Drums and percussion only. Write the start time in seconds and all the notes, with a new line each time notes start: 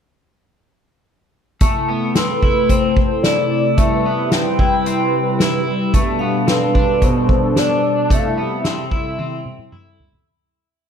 1.61 kick, closed hi-hat
2.15 snare, closed hi-hat
2.43 kick
2.69 kick, closed hi-hat
2.97 kick
3.24 snare, closed hi-hat
3.78 kick, closed hi-hat
4.31 snare, closed hi-hat
4.59 kick
4.86 closed hi-hat
5.40 snare, closed hi-hat
5.94 kick, closed hi-hat
6.48 snare, closed hi-hat
6.75 kick
7.02 kick, closed hi-hat
7.29 kick
7.56 snare, closed hi-hat
8.10 kick, closed hi-hat
8.65 snare, closed hi-hat
8.91 kick
9.19 high tom
9.45 mid tom
9.59 mid tom
9.72 mid tom
10.00 floor tom
10.13 floor tom